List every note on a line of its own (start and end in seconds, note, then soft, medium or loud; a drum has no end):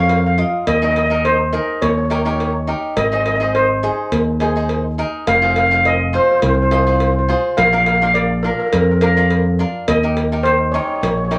0.00 0.42 F2 medium
0.00 0.22 F4 medium
0.00 0.22 A#4 medium
0.00 0.22 C#5 medium
0.00 0.10 F5 medium
0.09 0.17 F5 medium
0.09 cowbell medium
0.18 0.25 F5 medium
0.26 0.33 F5 medium
0.38 0.64 F4 medium
0.38 0.64 A#4 soft
0.38 0.65 D#5 medium
0.67 1.57 D#2 medium
0.67 0.75 D#5 medium
0.67 cowbell medium
0.77 0.83 D#5 medium
0.82 0.99 D#4 medium
0.82 0.99 G#4 medium
0.82 0.99 A#4 medium
0.82 0.90 D#5 medium
0.91 0.97 D#5 medium
0.96 1.05 D#5 medium
0.96 cowbell medium
1.06 1.13 D#5 medium
1.10 1.37 D#4 medium
1.10 1.37 G#4 soft
1.10 1.37 A#4 medium
1.15 1.21 D#5 medium
1.25 1.54 C5 medium
1.25 cowbell medium
1.53 1.82 D#4 medium
1.53 1.82 G#4 medium
1.53 1.83 A#4 medium
1.53 1.82 A#4 medium
1.82 2.72 D#2 medium
1.82 1.88 C#5 medium
1.82 cowbell medium
1.90 1.96 C#5 medium
1.98 2.04 C#5 medium
2.05 2.11 C#5 soft
2.10 2.20 D#4 medium
2.10 2.20 G4 medium
2.10 2.20 A#4 medium
2.10 2.19 C#5 medium
2.10 cowbell medium
2.21 2.27 C#5 soft
2.25 2.52 D#4 medium
2.25 2.52 G4 medium
2.25 2.52 A#4 medium
2.25 2.34 C#5 medium
2.35 2.42 C#5 soft
2.40 2.49 C#5 medium
2.40 cowbell medium
2.51 2.58 C#5 soft
2.67 2.94 D#4 medium
2.67 2.94 G4 medium
2.67 2.95 A#4 medium
2.97 3.87 G#1 medium
2.97 3.03 D#5 medium
2.97 cowbell medium
3.05 3.12 D#5 medium
3.12 3.29 D#4 medium
3.12 3.29 G#4 soft
3.12 3.29 C5 medium
3.12 3.19 D#5 medium
3.20 3.27 D#5 medium
3.26 3.34 D#5 medium
3.26 cowbell medium
3.36 3.42 D#5 medium
3.40 3.67 D#4 medium
3.40 3.67 G#4 medium
3.40 3.67 C5 medium
3.40 3.50 D#5 medium
3.55 3.68 C5 medium
3.55 cowbell medium
3.83 4.18 D#4 medium
3.83 4.37 G#4 medium
3.83 4.19 G#4 medium
3.83 4.19 C5 medium
4.12 5.02 D#2 medium
4.12 cowbell medium
4.40 4.50 D#4 medium
4.40 4.95 G#4 medium
4.40 4.51 G#4 soft
4.40 4.51 C5 medium
4.40 cowbell medium
4.56 4.82 D#4 medium
4.56 4.82 G#4 soft
4.56 4.83 C5 medium
4.69 cowbell medium
4.98 5.25 D#4 medium
4.98 5.25 G#4 medium
4.98 5.25 A#4 medium
5.27 6.17 F1 loud
5.27 5.34 F5 medium
5.27 cowbell medium
5.35 5.42 F5 medium
5.42 5.59 F4 medium
5.42 5.59 G#4 medium
5.42 5.59 C5 medium
5.42 5.50 F5 medium
5.51 5.57 F5 medium
5.56 5.65 F5 medium
5.56 cowbell medium
5.66 5.73 F5 medium
5.71 5.97 F4 medium
5.71 5.97 G#4 soft
5.71 5.98 C5 medium
5.71 5.81 F5 medium
5.85 5.99 D#5 medium
5.85 cowbell medium
6.13 6.49 F4 medium
6.13 6.49 G#4 medium
6.13 6.49 C5 medium
6.13 6.22 C5 medium
6.23 6.30 C5 medium
6.31 6.37 C5 medium
6.38 6.44 C5 medium
6.38 cowbell medium
6.43 7.32 C2 medium
6.43 6.52 C5 medium
6.54 6.61 C5 medium
6.62 6.68 C5 medium
6.71 6.81 F4 medium
6.71 6.81 G#4 medium
6.71 6.80 C5 medium
6.71 6.81 D#5 medium
6.71 cowbell medium
6.82 6.88 C5 medium
6.87 7.13 F4 medium
6.87 7.13 G#4 soft
6.87 7.13 C5 medium
6.87 6.95 C5 medium
6.96 7.02 C5 medium
6.96 cowbell medium
7.03 7.10 C5 medium
7.11 7.18 C5 soft
7.19 7.25 C5 medium
7.29 7.55 F4 medium
7.29 7.55 G#4 medium
7.29 7.55 C5 medium
7.57 8.48 A#1 loud
7.57 7.64 F5 loud
7.57 cowbell medium
7.65 7.72 F5 medium
7.72 7.89 D4 medium
7.72 7.90 F4 medium
7.72 7.90 A#4 medium
7.72 7.79 F5 medium
7.80 7.85 F5 medium
7.86 7.94 F5 medium
7.86 cowbell medium
7.95 8.02 F5 medium
8.02 8.28 D4 medium
8.02 8.28 F4 medium
8.02 8.28 A#4 medium
8.02 8.11 F5 medium
8.14 8.42 D5 medium
8.14 cowbell medium
8.43 8.79 D4 medium
8.43 8.79 F4 medium
8.43 8.50 A#4 medium
8.43 8.80 A#4 medium
8.52 8.58 A#4 medium
8.60 8.65 A#4 medium
8.66 8.74 A#4 medium
8.73 9.63 F2 medium
8.73 8.82 A#4 medium
8.73 cowbell medium
8.83 8.90 A#4 medium
8.91 8.97 A#4 medium
9.01 9.11 D4 medium
9.01 9.11 F4 medium
9.01 9.56 A#4 medium
9.01 9.11 A#4 medium
9.01 cowbell medium
9.17 9.43 D4 medium
9.17 9.43 F4 medium
9.17 9.43 A#4 medium
9.31 cowbell medium
9.59 9.85 D4 medium
9.59 9.85 F4 medium
9.59 9.86 A#4 medium
9.88 10.78 D#2 medium
9.88 10.47 D#5 medium
9.88 cowbell medium
10.03 10.20 D#4 medium
10.03 10.20 G4 soft
10.03 10.20 A#4 medium
10.17 cowbell medium
10.32 10.58 D#4 medium
10.32 10.58 G4 soft
10.32 10.58 A#4 medium
10.43 10.74 C5 medium
10.43 cowbell medium
10.72 11.09 D#4 medium
10.72 11.09 G4 medium
10.72 11.09 A#4 medium
10.72 10.79 C#5 medium
10.80 10.86 C#5 soft
10.87 10.94 C#5 medium
10.95 11.00 C#5 soft
11.01 11.39 A#1 medium
11.01 11.08 C#5 medium
11.01 cowbell medium
11.10 11.16 C#5 soft
11.17 11.23 C#5 medium
11.24 11.31 C#5 soft
11.31 11.39 D#4 medium
11.31 11.39 G4 medium
11.31 11.39 A#4 medium
11.31 11.39 C#5 medium
11.31 cowbell medium